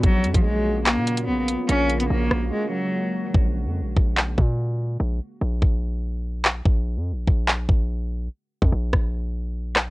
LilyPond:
<<
  \new Staff \with { instrumentName = "Ambient pad" } { \time 4/4 \key bes \minor \tempo 4 = 145 << { f'1 | <aes ges'>1 | r1 | r1 |
r1 | r1 | } \\ { <des bes>1~ | <des bes>1 | r1 | r1 |
r1 | r1 | } >> }
  \new Staff \with { instrumentName = "Cello" } { \time 4/4 \key bes \minor ges8. f16 aes4 bes4 ces'8 r8 | des'8. ces'16 bes4 aes8 ges4. | r1 | r1 |
r1 | r1 | }
  \new Staff \with { instrumentName = "808-style bass" } { \clef bass \time 4/4 \key bes \minor bes,,8 f,16 bes,,4. bes,8. bes,,8. r16 | bes,,4 bes,,8 bes,,8 r2 | bes,,8. f,16. bes,,16. bes,,4 bes,4. | bes,,8 r8 bes,,8 bes,,2~ bes,,8 |
bes,,8. f,16. bes,,16. bes,,4 bes,,4. | r8. f,16 bes,,8 bes,,2~ bes,,8 | }
  \new DrumStaff \with { instrumentName = "Drums" } \drummode { \time 4/4 <hh bd>8 hh16 <hh bd>16 r4 <hc hh>8 hh16 hh16 r8 hh8 | hh8 hh16 hh16 r8 ss8 r4 r4 | bd4 r8 bd8 hc8 bd8 r4 | r4 r8 bd8 r4 r8 hc8 |
bd4 r8 bd8 hc8 bd8 r4 | r8. bd16 r8 <bd ss>8 r4 r8 <hc ss>8 | }
>>